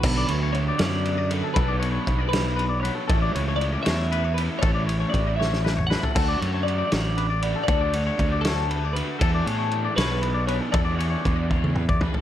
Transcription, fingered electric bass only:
X:1
M:6/8
L:1/8
Q:3/8=78
K:Bdor
V:1 name="Fingered electric bass" clef=bass
B,,, D,,2 F,,3 | B,,,2 B,,,4 | A,,, C,,2 E,,3 | A,,,2 A,,,4 |
D,, F,,2 A,,,3 | D,,2 D,,4 | E,, A,,2 B,,,3 | E,,2 E,,4 |]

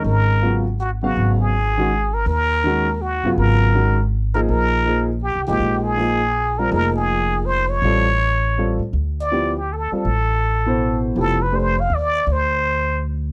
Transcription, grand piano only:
X:1
M:3/4
L:1/8
Q:"Swing" 1/4=162
K:G#dor
V:1 name="Grand piano"
[_E,_A,_D_E]2 [C,F,B,^E] z2 [C,F,B,e]- | [C,F,B,e]2 z [D,G,CF] z2 | z2 [D,G,CF] z2 [C,F,B,E]- | [C,F,B,E]2 [D,G,CF] z2 [E,A,DG]- |
[E,A,DG]2 [E,A,DG] z2 [E,G,A,D]- | [E,G,A,D]2 [E,A,DG] z2 [=G,^B,EA] | [E,A,DG]4- [E,A,DG] z | [=G,^B,E=A] z3 [G,B,EA] z |
[K:Ddor] z2 [F,B,EG] z2 [G,CFA] | z3 [B,,EAc]3 | [F,B,EG] z [A,DGB] z3 | z6 |]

